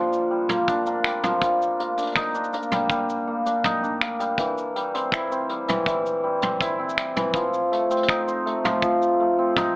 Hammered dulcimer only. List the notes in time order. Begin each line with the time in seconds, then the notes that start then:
Already playing: F3 G3 A#3 C4 D4
0.31 G3
0.49 A#3
0.68 D4
0.86 A#3
1.05 G3
1.24 F3
1.42 G3
1.79 A#3
1.98 D4
2.16 D#4
2.35 D4
2.53 A#3
2.72 G3
2.90 G3
3.27 A#3
3.46 D4
3.65 D#4
3.83 D4
4.02 A#3
4.20 G3
4.39 E3
4.76 G3
4.94 C4
5.13 E4
5.31 C4
5.50 G3
5.68 E3
5.87 E3
6.24 G3
6.42 C4
6.61 E4
6.79 C4
6.98 G3
7.16 E3
7.35 F3
7.72 A3
7.91 C4
8.09 D#4
8.27 C4
8.46 A3
8.64 F3
8.83 F3
9.20 A3
9.38 C4
9.57 D#4